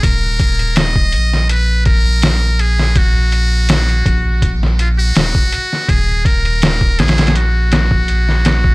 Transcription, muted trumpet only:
X:1
M:4/4
L:1/16
Q:"Swing 16ths" 1/4=82
K:Ebm
V:1 name="Muted trumpet"
B4 e4 c2 B4 A2 | G8- G z F G4- G | A2 B4 A2 G8 |]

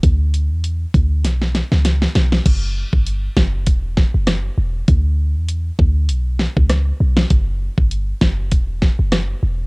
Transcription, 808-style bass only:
X:1
M:4/4
L:1/16
Q:"Swing 16ths" 1/4=99
K:Bm
V:1 name="808-style bass" clef=bass
D,,3 E,,3 D,,2 B,,,3 C,,3 B,,,2 | F,,,3 G,,,3 F,,,2 E,,,3 F,,,3 E,,,2 | D,,3 E,,3 D,,2 B,,,3 C,,3 B,,,2 | F,,,3 G,,,3 F,,,2 E,,,3 F,,,3 E,,,2 |]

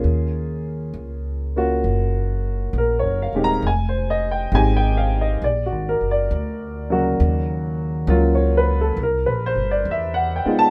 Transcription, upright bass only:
X:1
M:4/4
L:1/8
Q:"Swing" 1/4=68
K:Ebm
V:1 name="Upright bass" clef=bass
E,,2 D,,2 G,,,2 (3B,,, G,,, E,,, | F,,,2 A,,,2 (3B,,, A,,, ^F,,, =D,,2 | E,,2 D,,2 (3=C,, B,,, =G,,, =E,, z |]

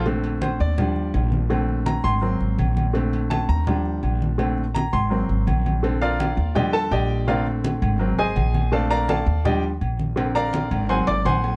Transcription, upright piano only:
X:1
M:4/4
L:1/8
Q:1/4=166
K:Bb
V:1 name="Upright piano"
z2 c d3 z2 | z2 b c'3 z2 | z2 a b3 z2 | z2 b c'3 z2 |
z [FBdf]3 [Gdeg] [Aa] [Gdeg]2 | [FBdf] z4 [_Ace_a]3 | [Adfa] [Bdfb] [Adfa]2 [Gdeg] z3 | z [Bdfb]3 [c_g_ac'] [dd'] [cgac']2 |]
V:2 name="Upright piano"
[D,A,C]4 [F,G,D]4 | [D,A,C]4 [_G,B,C]4 | [D,A,C]4 [F,G,D]4 | [D,A,C] z3 [_G,B,C]4 |
[D,CA]3 z [D,F,G,]4 | [D,A,C]4 [_G,B,C] z3 | [D,A,C]3 z [F,G,D] z3 | [D,B,C]4 [_G,B,C]4 |]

